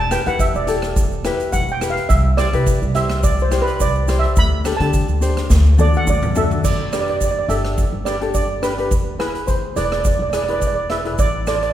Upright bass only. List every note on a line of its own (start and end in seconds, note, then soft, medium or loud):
0.00 0.16 E1 medium
0.27 0.48 E2 medium
0.54 1.31 E1 medium
1.53 1.97 E1 medium
2.10 2.43 C2 loud
2.53 2.75 C3 loud
2.82 3.58 C2 medium
3.80 4.24 C2 medium
4.37 4.70 D2 loud
4.80 5.02 D3 medium
5.08 5.41 D2 medium
5.50 5.94 D2 loud
6.07 6.51 D2 medium
6.64 7.30 G1 medium
7.49 7.82 G1 medium
7.93 8.91 G1 medium
8.91 9.57 E1 medium
9.76 10.10 E1 medium
10.19 11.18 E1 medium
11.18 11.73 A1 medium